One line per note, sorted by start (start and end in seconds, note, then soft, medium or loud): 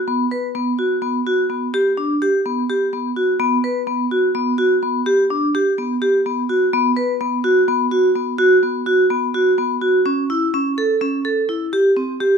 0.08 0.24 B3 medium
0.31 0.48 B4 medium
0.55 0.72 B3 medium
0.79 0.95 F#4 medium
1.02 1.19 B3 medium
1.27 1.43 F#4 medium
1.50 1.67 B3 soft
1.74 1.90 G4 medium
1.97 2.14 D4 medium
2.22 2.38 G4 medium
2.46 2.62 B3 medium
2.70 2.86 G4 medium
2.93 3.09 B3 medium
3.16 3.33 F#4 medium
3.40 3.56 B3 medium
3.64 3.81 B4 medium
3.87 4.04 B3 medium
4.11 4.28 F#4 medium
4.35 4.52 B3 medium
4.58 4.75 F#4 medium
4.83 4.99 B3 medium
5.06 5.23 G4 medium
5.30 5.47 D4 medium
5.55 5.71 G4 medium
5.78 5.95 B3 medium
6.02 6.18 G4 medium
6.26 6.43 B3 medium
6.49 6.66 F#4 medium
6.73 6.90 B3 medium
6.97 7.13 B4 medium
7.21 7.37 B3 medium
7.44 7.61 F#4 medium
7.68 7.85 B3 medium
7.91 8.08 F#4 medium
8.16 8.32 B3 medium
8.38 8.56 F#4 medium
8.63 8.80 B3 medium
8.86 9.03 F#4 medium
9.10 9.27 B3 medium
9.34 9.51 F#4 medium
9.58 9.75 B3 medium
9.81 9.98 F#4 medium
10.06 10.23 C#4 medium
10.30 10.47 E4 medium
10.54 10.71 C#4 medium
10.78 10.94 A4 medium
11.01 11.18 C#4 medium
11.25 11.42 A4 medium
11.49 11.66 E4 medium
11.73 11.89 G4 medium
11.97 12.13 C4 medium
12.20 12.37 G4 medium